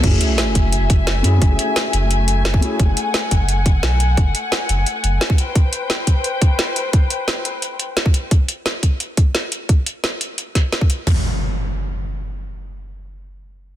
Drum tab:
CC |x---------------|----------------|----------------|----------------|
HH |x-x-x-x-x-x-x-x-|x-x-x-x-x-x-x-x-|x-x-x-x-x-x-x-x-|x-x-x-x-x-x-x-x-|
SD |----o-------o---|----o-------o---|----o-------o---|----o-------o---|
FT |----------------|----------------|----------------|----------------|
BD |o-----o---o-----|o------------o--|o-----o---o-----|o------------o--|

CC |----------------|----------------|----------------|----------------|
HH |x-x-x-x-x-x-x-x-|x-x-x-x-x-x-x-x-|x-x-x-x-x-x-x-x-|x-x-x-x-x-x-x-x-|
SD |----o-------o---|----o-------o---|----o-------o---|----o-----o-o---|
FT |----------------|----------------|----------------|----------------|
BD |o-----o---o-----|o------------o--|o-----o---o-----|o---------o--o--|

CC |----------------|----------------|
HH |o---------------|----------------|
SD |----------------|----------------|
FT |o---------------|----------------|
BD |o---------------|----------------|